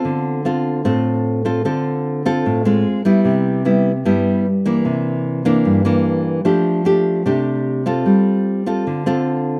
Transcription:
\new Staff \with { instrumentName = "Nylon-string guitar" } { \time 4/4 \key c \major \tempo 4 = 150 << { <c' f' a'>4 <c' f' a'>4 <c' f' a'>4. <c' f' a'>8 | <c' f' a'>4. <c' f' a'>4 <aes c' f'>4 <g b e'>8~ | <g b e'>4 <g b e'>8 r8 <g b e'>4 r8 <e bes d'>8~ | <e bes d'>4. <e bes d'>4 <e bes d'>4. |
<a d' g'>4 <a d' g'>4 <a d' g'>4. <c' f' a'>8~ | <c' f' a'>4. <c' f' a'>4 <c' f' a'>4. | } \\ { d2 a,2 | d2 a,4 r4 | c2 g,2 | c2 g,2 |
f2 c2 | g2 d2 | } >> }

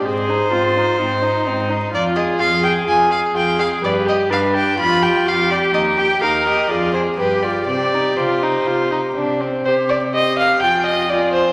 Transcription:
<<
  \new Staff \with { instrumentName = "Violin" } { \time 4/4 \key c \minor \tempo 4 = 125 c''1 | d''8 ees''8 f''8 g''8 aes''8 f''8 g''8 f''8 | d''8 ees''8 f''8 g''8 b''8 g''8 f''8 d''8 | ees''8 g''8 f''8 ees''8 d''8 c''8 b'8 d''8 |
d''4 c''2~ c''8 r8 | c''4 c''8 bes'8 aes'4 aes'4 | }
  \new Staff \with { instrumentName = "Viola" } { \time 4/4 \key c \minor aes'4 f'4 ees'2 | f'4 aes'2. | g'4 d'4 f'4 g'4~ | g'4 bes'4 aes'4 g'4 |
g'2.~ g'8 r8 | g'4 g'4 f'4 f'4 | }
  \new Staff \with { instrumentName = "Violin" } { \time 4/4 \key c \minor c'8 ees'8 c'8 ees'8 c'8 ees'8 c'8 ees'8 | f'8 aes'8 f'8 aes'8 f'8 aes'8 f'8 aes'8 | b'8 g'8 b'8 g'8 f'8 g'8 f'8 g'8 | ees'8 g'8 ees'8 g'8 f'8 aes'8 g'8 f'8 |
c'8 ees'8 f'8 ees'8 f'8 ees'8 d'8 c'8 | c''8 d''8 ees''8 f''8 g''8 ees''8 d''8 c''8 | }
  \new Staff \with { instrumentName = "Cello" } { \clef bass \time 4/4 \key c \minor aes,4 aes,4 aes,4 aes,4 | f,4 f,4 f,4 f,4 | g,4 g,4 f,4 f,4 | ees,4 ees,4 f,4 g,4 |
c4 c4 c4 c4 | c2 f,2 | }
>>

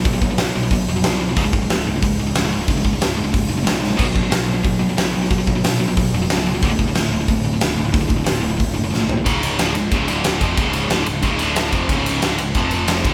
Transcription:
<<
  \new Staff \with { instrumentName = "Distorted electric guitar" } { \clef bass \time 4/4 \tempo 4 = 183 <b, fis>16 <b, fis>16 <b, fis>16 <b, fis>16 <b, fis>8 <b, fis>16 <b, fis>16 <b, fis>8 <b, fis>16 <b, fis>16 <b, fis>16 <b, fis>16 <b, fis>16 <b, fis>16 | <cis, gis, cis>16 <cis, gis,>16 <cis, gis,>16 <cis, gis,>16 <cis, gis,>8 <cis, gis,>16 <cis, gis,>16 <cis, gis,>8 <cis, gis,>16 <cis, gis,>16 <cis, gis,>16 <cis, gis,>16 <cis, gis,>16 <cis, gis,>16 | <cis, gis,>16 <cis, gis,>16 <cis, gis,>16 <cis, gis,>16 <cis, gis,>8 <cis, gis,>16 <cis, gis,>16 <cis, gis,>8 <cis, gis,>16 <cis, gis,>16 <cis, gis,>16 <cis, gis,>16 <cis, gis,>16 <cis, gis,>16 | <b, fis b>16 <b, fis>16 <b, fis>16 <b, fis>16 <b, fis>8 <b, fis>16 <b, fis>16 <b, fis>8 <b, fis>16 <b, fis>16 <b, fis>16 <b, fis>16 <b, fis>16 <b, fis>16 |
<b, fis>16 <b, fis>16 <b, fis>16 <b, fis>16 <b, fis>8 <b, fis>16 <b, fis>16 <b, fis>8 <b, fis>16 <b, fis>16 <b, fis>16 <b, fis>16 <b, fis>16 <b, fis>16 | <d, a, d>16 <d, a,>16 <d, a,>16 <d, a,>16 <d, a,>8 <d, a,>16 <d, a,>16 <d, a,>8 <d, a,>16 <d, a,>16 <d, a,>16 <d, a,>16 <d, a,>16 <d, a,>16 | <d, a,>16 <d, a,>16 <d, a,>16 <d, a,>16 <d, a,>8 <d, a,>16 <d, a,>16 <d, a,>8 <d, a,>16 <d, a,>16 <d, a,>16 <d, a,>16 <d, a,>16 <d, a,>16 | <cis, gis, cis>4 <d, a, d>8 <cis, gis,>8 <cis, gis, cis>8 <d, a, d>4 <eis, bis, eis>8 |
<cis, gis, cis>4 <d, a, d>8 <cis, gis,>8 <cis, gis, cis>8 <d, a, d>4 <eis, bis, eis>8 | <cis, gis, cis>4 <d, a, d>8 <cis, gis,>8 <f, c f>4. <d, a, d>8 | }
  \new Staff \with { instrumentName = "Picked electric bass" } { \clef bass \time 4/4 b,,8 b,,8 b,,8 b,,8 b,,8 eis,,8 bis,,4 | cis,,8 cis,,8 cis,,8 cis,,8 cis,,4 cis,,8 cis,,8 | cis,,8 cis,,8 cis,,8 cis,,8 cis,,8 fis,,8 b,,4 | b,,8 b,,8 b,,8 b,,8 b,,4 b,,8 b,,8 |
b,,8 b,,8 b,,8 b,,8 b,,8 eis,,8 cis,,4 | d,,8 d,,8 d,,8 d,,8 d,,4 d,,8 d,,8 | d,,8 d,,8 d,,8 d,,8 d,,8 fis,,8 b,,4 | cis,,4 d,,8 cis,,8 cis,,8 d,,4 eis,,8 |
cis,,4 d,,8 cis,,8 cis,,8 d,,4 eis,,8 | cis,,4 d,,8 cis,,8 f,,4. d,,8 | }
  \new DrumStaff \with { instrumentName = "Drums" } \drummode { \time 4/4 <hho bd>8 bd8 <hho sn>4 <hho bd>4 <hho sn>4 | <hho bd>8 bd8 <hho sn>4 <hho bd>4 <hho sn>4 | <hho bd>8 bd8 <hho sn>4 <hho bd>4 <hho sn>8 sn8 | <cymc bd>8 bd8 <hho sn>4 <hho bd>4 <hho sn>8. sn16 |
<hho bd>8 bd8 <hho sn>4 <hho bd>4 <hho sn>4 | <hho bd>8 bd8 <hho sn>4 <hho bd>4 <hho sn>4 | <hho bd>8 bd8 <hho sn>4 <hho bd>4 sn8 tomfh8 | <bd cymr>8 cymr8 <cymr sn>8 cymr8 <bd cymr>8 cymr8 <cymr sn>8 <bd cymr>8 |
<bd cymr>8 cymr8 <cymr sn>8 cymr8 <bd cymr>8 cymr8 <cymr sn>8 <bd cymr>8 | <bd cymr>8 cymr8 <cymr sn>8 cymr8 <bd cymr>8 cymr8 <cymr sn>8 <bd cymr>8 | }
>>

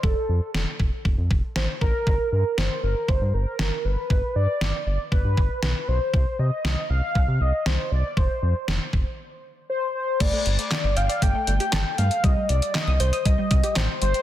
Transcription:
<<
  \new Staff \with { instrumentName = "Soft synth lead" } { \time 4/4 \key g \minor \tempo 4 = 118 a'4 r2 c''8 bes'8~ | bes'8 bes'8 c''8 bes'8 c''8 bes'4 b'8~ | b'8 d''4 d''8 b'4 b'8 c''8~ | c''8 ees''4 f''4 ees''8 c''8 d''8 |
c''4 r2 c''8 c''8 | d''8 d''4 f''8 g''4. f''8 | ees''8 d''8 ees''8 c''8 ees''4 c''8 c''8 | }
  \new Staff \with { instrumentName = "Synth pluck" } { \time 4/4 \key g \minor r1 | r1 | r1 | r1 |
r1 | a16 a16 r8. d''16 g''16 d''16 a16 a16 a16 g'16 a'16 r16 a16 r16 | g16 g16 r8. ees'''16 g'''16 ees'''16 g16 g16 g16 g'16 g''16 r16 g16 r16 | }
  \new Staff \with { instrumentName = "Analog synth bass" } { \clef bass \time 4/4 \key g \minor f,,16 r16 f,16 r16 f,,16 r16 f,,16 r16 f,,16 f,16 f,,16 r16 a,,16 r16 a,,16 r16 | g,,16 r16 g,16 r16 g,,16 r16 g,,16 r16 g,,16 g,16 g,,16 r16 g,,16 r16 g,,16 r16 | g,,16 r16 g,16 r16 g,,16 r16 g,,16 r16 g,,16 g,16 g,,16 r16 b,,16 r16 b,,16 r16 | c,16 r16 c16 r16 c,16 r16 c,16 r16 c,16 c16 c,16 r16 c,16 r16 c,16 r16 |
f,,16 r16 f,16 r16 f,,16 r16 f,,16 r2 r16 | g,,16 r16 g,,16 r8 g,,16 g,,16 r16 g,,16 r16 g,,16 r16 g,,16 r16 g,16 r16 | c,16 r16 c,16 r8 c,16 c,16 r16 c,16 r16 c,16 r16 a,,16 r16 g,,16 r16 | }
  \new DrumStaff \with { instrumentName = "Drums" } \drummode { \time 4/4 bd4 sn8 bd8 bd8 bd8 sn8 bd8 | bd4 sn4 bd4 sn4 | bd4 sn4 bd8 bd8 sn4 | bd4 sn4 bd4 sn4 |
bd4 sn8 bd8 r4 r4 | <cymc hh bd>8 hh16 hh16 <hc hh sn>8 hh16 hh16 <hh bd>8 hh16 hh16 <hc hh sn>8 hh16 hh16 | <hh bd>8 hh16 hh16 <hc hh sn>8 hh16 hh16 <hh bd>8 <hh bd>16 hh16 <hc hh sn>8 hh16 hh16 | }
>>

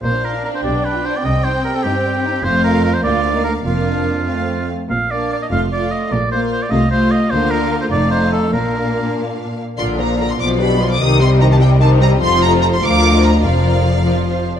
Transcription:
<<
  \new Staff \with { instrumentName = "Violin section" } { \time 6/8 \key bes \major \tempo 4. = 99 f''4. g''4.~ | g''2. | f''4. f''4. | f''4. f''4 r8 |
r8 f''4 f''8 f''4 | r8 f''4 f''8 f''4 | f''4. f''4. | f''2~ f''8 r8 |
c'''8 bes''8 bes''16 c'''16 d'''8 b''8 c'''16 d'''16 | ees'''8 c'''8 bes''16 a''16 g''8 a''8 bes''8 | c'''8 bes''8 bes''16 c'''16 d'''4 bes''8 | f''2~ f''8 r8 | }
  \new Staff \with { instrumentName = "Oboe" } { \time 6/8 \key bes \major c''8 bes'8 bes'16 c''16 d''8 b'8 c''16 d''16 | ees''8 c''8 bes'16 a'16 g'4. | c''8 bes'8 bes'16 c''16 d''4 bes'8 | f'2~ f'8 r8 |
f''8 d''8 d''16 ees''16 f''8 d''8 ees''8 | d''8 c''8 c''16 d''16 ees''8 c''8 ees''8 | c''8 bes'8 bes'16 c''16 d''8 c''8 a'8 | bes'4. r4. |
r2. | r2. | r2. | r2. | }
  \new Staff \with { instrumentName = "Violin section" } { \time 6/8 \key bes \major << { bes16 d'16 f'16 d'16 bes16 d'16 g16 b16 d'16 f'16 d'16 b16 | g16 c'16 ees'16 c'16 g16 c'16 ees'16 c'16 g16 c'16 ees'16 c'16 | f'4. f'8. ees'8. | d'4. c'4 r8 |
r8 d'4 f'8 f'4 | r8 f'4 f'8 f'4 | f'4. ees'4. | d'2~ d'8 r8 |
d''8 f''8 d''8 d''8 b'8 d''8 | c''8 ees''8 c''8 ees''8 c''8 ees''8 | c''4. f''8. ees''8. | d''4. d''8 c''8 c''16 d''16 | } \\ { r2. | r2. | r2. | r2. |
r2. | r2. | r2. | r2. |
d''8 bes'8 d''8 b'8 g'8 b'8 | ees'8 g'8 ees'8 g'8 ees'8 g'8 | a'4. bes'4. | bes'4. r4. | } >> }
  \new Staff \with { instrumentName = "Viola section" } { \time 6/8 \key bes \major d'2. | c'2. | a4. bes4. | bes4. a4 r8 |
r8 bes4 a8 a4 | r8 bes4 a8 a4 | bes4. a4. | bes2~ bes8 r8 |
<d f'>8 <f d'>8 <d f'>8 <f f'>8 <g d'>8 <f f'>8 | <ees ees'>8 <g c'>8 <ees ees'>8 <g c'>8 <ees ees'>8 <g c'>8 | <f f'>4. <f f'>4. | <f f'>4. <f f'>4 r8 | }
  \new Staff \with { instrumentName = "Cello section" } { \clef bass \time 6/8 \key bes \major bes,4. b,4. | c4. g,4. | f,4. d,4. | f,2~ f,8 r8 |
bes,4. f,4. | bes,4. c4. | d4. f,4. | bes,2~ bes,8 r8 |
bes,4. b,4. | c2. | f,4. d,4. | f,2~ f,8 r8 | }
  \new Staff \with { instrumentName = "Double bass section" } { \clef bass \time 6/8 \key bes \major bes,,4 r8 b,,4 r8 | c,4 r2 | f,,4 r8 d,4 r8 | f,,4 r2 |
bes,,4 r8 f,,4 r8 | bes,,4 r8 c,4 r8 | d,4 r8 f,,4 r8 | bes,,4 r2 |
bes,,4. b,,4. | c,2. | f,,4. d,4. | f,,2~ f,,8 r8 | }
>>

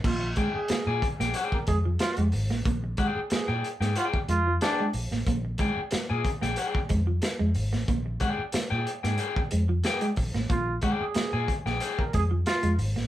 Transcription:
<<
  \new Staff \with { instrumentName = "Clean electric guitar" } { \time 4/4 \key bes \mixolydian \tempo 4 = 92 r8 <aes' d'' g''>16 r8 <aes' d'' aes''>16 r16 <aes' d'' g''>16 <aes' d'' g''>16 r4. r16 | r8 <aes' d'' g''>16 r8 <aes' d'' g''>16 r16 <aes' d'' g''>16 <aes' d'' g''>16 r8. <aes' d'' g''>16 r8. | r8 <aes' d'' g''>16 r8 <aes' d'' aes''>16 r16 <aes' d'' g''>16 <aes' d'' g''>16 r4. r16 | r8 <aes' d'' g''>16 r8 <aes' d'' g''>16 r16 <aes' d'' g''>16 <aes' d'' g''>16 r8. <aes' d'' g''>16 r8. |
r8 <aes' d'' g''>16 r8 <aes' d'' aes''>16 r16 <aes' d'' g''>16 <aes' d'' g''>16 r4. r16 | }
  \new Staff \with { instrumentName = "Trombone" } { \time 4/4 \key bes \mixolydian f'8 r16 aes'8. r8. bes'16 aes'16 r16 f'8 r8 | r8. aes'16 aes'8 r8 f'16 r16 f'8 d'8 r8 | r1 | r1 |
f'8 r16 aes'8. r8. bes'16 aes'16 r16 f'8 r8 | }
  \new Staff \with { instrumentName = "Clean electric guitar" } { \time 4/4 \key bes \mixolydian bes16 r16 aes16 r16 bes16 r8 bes16 r8 aes16 f16 r16 aes16 r16 bes16 | bes16 r16 aes16 r16 bes16 r8 bes16 r8 aes16 f16 r16 aes16 r16 bes16 | bes16 r16 aes16 r16 bes16 r8 bes16 r8 aes16 f16 r16 aes16 r16 bes16 | bes16 r16 aes16 r16 bes16 r8 bes16 r8 aes16 f16 r16 aes16 r16 bes16 |
bes16 r16 aes16 r16 bes16 r8 bes16 r8 aes16 f16 r16 aes16 r16 bes16 | }
  \new Staff \with { instrumentName = "Fingered electric bass" } { \clef bass \time 4/4 \key bes \mixolydian bes,,8 r8. bes,16 r16 bes,,16 r8 f,8 r16 f,16 aes,,16 a,,16 | bes,,8 r8. bes,16 r16 aes,16 r8 f,8 r8 bes,,16 a,,16 | bes,,8 r8. bes,16 r16 bes,,16 r8 f,8 r16 f,16 aes,,16 a,,16 | bes,,8 r8. bes,16 r16 aes,16 r8 f,8 r8 bes,,16 a,,16 |
bes,,8 r8. bes,16 r16 bes,,16 r8 f,8 r16 f,16 aes,,16 a,,16 | }
  \new DrumStaff \with { instrumentName = "Drums" } \drummode { \time 4/4 <cymc bd>8 <hh bd>8 <hh sn>8 <hh bd>16 <hh sn>16 hh16 bd16 <hh bd>8 <hh sn>16 hh16 hho16 sn16 | <hh bd>8 <hh bd>8 <hh sn>8 hh16 <hh sn>16 hh16 bd16 hh8 <hh sn>8 hho16 sn16 | <hh bd>8 <hh bd>8 <hh sn>8 <hh bd>16 <hh sn>16 hh16 bd16 <hh bd>8 <hh sn>8 hho16 sn16 | <hh bd>8 <hh bd>8 <hh sn>8 hh16 <hh sn>16 hh16 bd16 hh8 <hh sn>16 hh16 <hho bd>16 sn16 |
<hh bd>8 <hh bd>8 <hh sn>8 <hh bd>16 sn16 hh16 bd16 <hh bd>8 <hh sn>16 hh16 hho16 sn16 | }
>>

